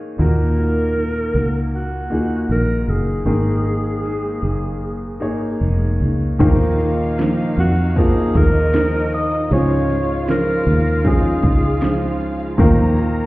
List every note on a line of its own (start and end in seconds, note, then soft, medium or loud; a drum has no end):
0.00 0.13 A#3 medium
0.00 0.18 A#3 soft
0.00 0.13 D#4 medium
0.00 0.19 D#4 soft
0.00 0.14 G#4 medium
0.00 0.19 G#4 soft
0.00 0.14 C#5 medium
0.18 1.31 D#2 medium
0.18 1.30 A#2 soft
0.18 0.57 D#3 medium
0.18 1.65 A#3 medium
0.18 0.58 A#3 medium
0.18 1.65 D#4 medium
0.18 0.57 D#4 medium
0.18 1.65 F#4 medium
0.18 0.55 F#4 medium
0.18 1.66 A#4 medium
0.18 1.70 A#4 medium
0.56 0.95 A#3 soft
0.56 0.96 D#4 soft
0.56 0.95 F#4 soft
0.95 1.34 D#3 soft
0.95 1.34 A#3 soft
0.95 1.34 D#4 soft
0.95 1.33 F#4 soft
1.34 2.11 C#2 medium
1.34 2.49 A#3 soft
1.34 2.50 D#4 soft
1.34 2.49 F#4 soft
1.75 2.47 F#4 medium
2.10 2.47 D#2 medium
2.10 3.20 A#3 medium
2.10 3.20 D#4 medium
2.10 2.18 F4 soft
2.10 3.21 G#4 medium
2.18 3.24 F#4 medium
2.48 2.85 A#1 medium
2.48 2.87 D#3 soft
2.48 2.88 A#3 soft
2.48 2.88 D#4 medium
2.48 2.86 F#4 medium
2.48 2.91 A#4 medium
2.87 3.24 F#1 medium
2.87 3.25 A#3 soft
2.87 3.26 D#4 soft
2.87 3.26 F#4 soft
2.87 5.62 G#4 medium
3.25 4.38 G#1 medium
3.25 4.38 G#2 soft
3.25 4.38 D#3 soft
3.25 3.64 G#3 medium
3.25 4.73 A#3 medium
3.25 3.65 A#3 medium
3.25 4.74 D#4 soft
3.25 3.64 D#4 medium
3.25 4.74 G#4 medium
3.25 3.62 G#4 medium
3.25 4.74 A#4 medium
3.63 4.02 A#3 soft
3.63 4.03 D#4 soft
3.63 4.03 G#4 soft
4.02 4.42 G#3 soft
4.02 4.43 A#3 medium
4.02 4.42 D#4 medium
4.02 4.40 G#4 medium
4.42 5.21 F#1 medium
4.42 5.62 A#3 soft
4.42 5.62 D#4 soft
4.42 5.61 G#4 soft
5.20 5.58 G#1 medium
5.20 6.34 A#3 medium
5.20 6.34 D#4 medium
5.20 6.34 G#4 medium
5.20 6.35 C#5 medium
5.61 5.98 F1 medium
5.61 6.01 G#3 medium
5.61 6.01 A#3 soft
5.61 6.01 D#4 medium
5.61 5.99 G#4 medium
6.00 6.37 C#2 medium
6.00 6.40 A#3 soft
6.00 6.41 D#4 soft
6.00 6.40 G#4 soft
6.39 7.34 D#2 loud
6.39 7.54 A#2 medium
6.39 7.88 D#3 medium
6.39 6.79 D#3 medium
6.39 6.80 F3 medium
6.39 7.89 A#3 medium
6.39 6.80 A#3 medium
6.39 7.89 D#4 medium
6.39 8.31 D#4 medium
6.39 6.79 D#4 loud
6.39 6.78 F4 medium
6.39 6.47 G#4 medium
6.39 8.31 F5 medium
6.39 7.89 F5 medium
6.39 kick loud
6.39 crash medium
6.39 ride medium
6.47 7.92 A#4 medium
6.79 7.19 A#3 soft
6.79 7.19 D#4 medium
6.79 7.18 F4 medium
6.79 ride medium
7.18 7.58 D#3 medium
7.18 7.58 F3 medium
7.18 7.58 A#3 medium
7.18 7.58 D#4 loud
7.18 7.59 F4 loud
7.18 snare loud
7.18 ride medium
7.58 8.31 F2 medium
7.58 7.97 D#4 soft
7.58 8.00 F#4 medium
7.58 ride medium
7.96 9.43 F3 medium
7.96 8.35 F3 medium
7.96 9.43 A#3 medium
7.96 8.36 A#3 soft
7.96 9.43 D#4 medium
7.96 8.35 D#4 medium
7.96 9.44 F4 medium
7.96 8.34 F4 medium
7.96 8.39 G#4 medium
7.96 9.44 A#4 medium
7.96 kick medium
7.96 ride medium
8.34 9.47 D#2 loud
8.34 8.74 A#3 soft
8.34 9.49 D#4 medium
8.34 8.75 D#4 medium
8.34 8.74 F4 medium
8.34 9.14 A#4 loud
8.34 9.49 D#5 medium
8.34 kick medium
8.34 ride soft
8.55 ride soft
8.74 9.50 D#3 medium
8.74 9.51 F3 medium
8.74 9.52 A#3 medium
8.74 9.52 D#4 medium
8.74 9.52 F4 medium
8.74 snare loud
8.74 ride medium
9.13 9.49 D#5 loud
9.13 ride medium
9.32 ride medium
9.51 10.44 C#2 loud
9.51 10.63 G#2 medium
9.51 9.89 C#3 medium
9.51 9.90 F3 medium
9.51 10.97 G#3 medium
9.51 9.90 G#3 medium
9.51 10.97 C#4 medium
9.51 10.98 D#4 medium
9.51 9.90 D#4 medium
9.51 12.54 F4 medium
9.51 10.98 F4 medium
9.51 9.88 F4 medium
9.51 10.98 G#4 medium
9.51 10.25 C#5 loud
9.51 12.54 F5 medium
9.51 ride medium
9.89 10.27 G#3 soft
9.89 10.28 D#4 soft
9.89 10.28 F4 medium
9.89 ride medium
10.28 10.66 C#3 medium
10.28 10.67 F3 medium
10.28 10.67 G#3 medium
10.28 10.67 D#4 medium
10.28 10.65 F4 medium
10.28 11.09 A#4 loud
10.28 snare medium
10.28 ride medium
10.66 11.39 D#2 medium
10.66 11.05 G#3 soft
10.66 11.06 D#4 soft
10.66 11.05 F4 medium
10.66 ride medium
11.04 11.43 F3 medium
11.04 12.51 G#3 medium
11.04 11.44 G#3 medium
11.04 12.51 C#4 medium
11.04 12.51 D#4 medium
11.04 11.44 D#4 medium
11.04 12.51 F4 medium
11.04 11.42 F4 medium
11.04 12.51 G#4 medium
11.04 12.21 G#4 medium
11.04 kick medium
11.04 ride medium
11.42 12.55 C#2 medium
11.42 11.82 D#4 soft
11.42 11.82 F4 medium
11.42 kick medium
11.42 ride soft
11.47 11.82 G#3 soft
11.62 ride soft
11.82 12.59 C#3 medium
11.82 12.59 F3 medium
11.82 12.59 G#3 medium
11.82 12.60 D#4 medium
11.82 12.61 F4 medium
11.82 snare loud
11.82 ride medium
12.21 ride soft
12.40 ride soft
12.58 13.26 D#2 loud
12.58 13.26 A#2 medium
12.58 13.26 D#3 medium
12.58 12.97 D#3 loud
12.58 12.98 F3 medium
12.58 13.26 A#3 medium
12.58 12.98 A#3 medium
12.58 13.26 D#4 medium
12.58 12.98 D#4 medium
12.58 12.96 F4 loud
12.58 13.26 A#4 medium
12.58 13.26 A#4 loud
12.58 13.26 F5 medium
12.58 13.26 A#5 medium
12.58 kick loud
12.58 ride medium
12.97 13.26 A#3 medium
12.97 13.26 D#4 medium
12.97 13.26 F4 medium
12.97 ride medium